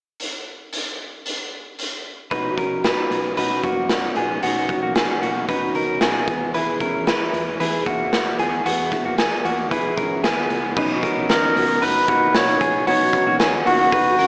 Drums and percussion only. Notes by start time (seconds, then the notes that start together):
0.20 closed hi-hat
0.73 closed hi-hat
1.26 closed hi-hat
1.79 closed hi-hat
2.31 kick, closed hi-hat
2.58 kick, closed hi-hat
2.84 snare, closed hi-hat
3.11 closed hi-hat
3.37 closed hi-hat
3.63 kick, closed hi-hat
3.89 snare, closed hi-hat
4.16 closed hi-hat
4.43 closed hi-hat
4.69 kick, closed hi-hat
4.95 snare, closed hi-hat
5.23 closed hi-hat
5.49 kick, closed hi-hat
5.75 closed hi-hat
6.01 snare, closed hi-hat
6.27 kick, closed hi-hat
6.54 closed hi-hat
6.80 kick, closed hi-hat
7.07 snare, closed hi-hat
7.34 closed hi-hat
7.60 closed hi-hat
7.86 kick, closed hi-hat
8.13 snare, closed hi-hat
8.39 closed hi-hat
8.66 closed hi-hat
8.92 kick, snare, closed hi-hat
9.18 snare, closed hi-hat
9.45 closed hi-hat
9.71 kick, closed hi-hat
9.97 kick, closed hi-hat
10.24 snare, closed hi-hat
10.50 closed hi-hat
10.77 kick, crash
11.03 kick, hi-hat pedal, open hi-hat
11.29 snare, hi-hat pedal, open hi-hat
11.56 hi-hat pedal, open hi-hat
11.82 hi-hat pedal, open hi-hat
12.08 kick, hi-hat pedal, open hi-hat
12.35 snare, hi-hat pedal, open hi-hat
12.61 kick, hi-hat pedal, open hi-hat
12.87 hi-hat pedal, open hi-hat
13.13 kick, hi-hat pedal, open hi-hat
13.40 snare, hi-hat pedal, open hi-hat
13.66 hi-hat pedal, open hi-hat
13.92 kick, hi-hat pedal, open hi-hat
14.18 hi-hat pedal, open hi-hat